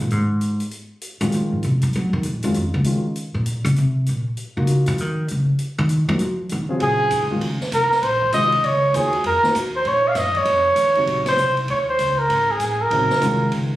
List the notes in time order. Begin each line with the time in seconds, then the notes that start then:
0.02 A#2
0.10 G#2, closed hi-hat
0.41 closed hi-hat
0.60 closed hi-hat
0.71 closed hi-hat
1.01 closed hi-hat
1.21 D#3 F#3 G#3 C#4 F4, closed hi-hat
1.32 F3, closed hi-hat
1.52 G#2
1.63 C3, closed hi-hat
1.82 F3, closed hi-hat
1.93 F#3, closed hi-hat
2.13 D#3
2.23 A#2, closed hi-hat
2.42 F#2 D#3 G#3 C#4 F4, closed hi-hat
2.54 F2, closed hi-hat
2.74 C#2
2.84 D#3 G#3 C#4 F4, closed hi-hat
3.16 closed hi-hat
3.34 A#2
3.46 closed hi-hat
3.65 C#3, closed hi-hat
3.76 C3, closed hi-hat
4.06 A#2, closed hi-hat
4.37 closed hi-hat
4.57 C#3 A#3 D#4 F4 F#4
4.67 closed hi-hat
4.86 F3, closed hi-hat
4.98 D#3, closed hi-hat
5.28 C#3, closed hi-hat
5.59 closed hi-hat
5.78 D#3
5.89 closed hi-hat
6.08 F3 F#3 A#3 D#4 F#4
6.19 F3, closed hi-hat
6.49 D#3, closed hi-hat
6.69 C#3 F#3 C4 F4 G#4
6.80 A#2 G#4, ride
7.11 D#2, hi-hat pedal, ride
7.22 C#2
7.30 A#1 D#3 G#3 C#4 F4
7.41 C#2, ride
7.61 muted upright bass stroke, snare
7.72 C2 A#4, hi-hat pedal, ride
7.91 muted upright bass stroke, snare
8.02 A#1 C5, ride
8.22 kick
8.32 C2 D#3 G#3 C#4 F4 D#5, hi-hat pedal, ride
8.52 ride
8.63 C#2 C#5, ride
8.94 D#2 F3 A#3 D#4 F#4 G#4, hi-hat pedal, ride
9.13 ride
9.24 F2 A#4, ride
9.43 F3 A#3 D#4 F#4, muted upright bass stroke, snare
9.54 D#2, hi-hat pedal, ride
9.76 C5
9.85 A#2 C#5, ride
10.08 F5
10.15 F#2 D#5, snare, hi-hat pedal, ride
10.34 C#5, kick, ride
10.45 F2, ride
10.76 D#2, hi-hat pedal, ride
10.95 C3 C#3 F#3 D#4, ride
11.07 A#1, ride
11.26 C5, snare, ride
11.37 C2, hi-hat pedal
11.57 ride
11.68 D#2 C#5, ride
11.89 C5
11.99 C#2, hi-hat pedal, ride
12.19 A#4
12.29 G#1, ride
12.51 G#4
12.60 A1, hi-hat pedal, ride
12.82 A#4
12.90 A#1 C#3 F#3 C4 D#4, ride
13.10 muted upright bass stroke, snare
13.21 C2 D#3 G#3 C#4 F4, hi-hat pedal, ride
13.52 C#2, ride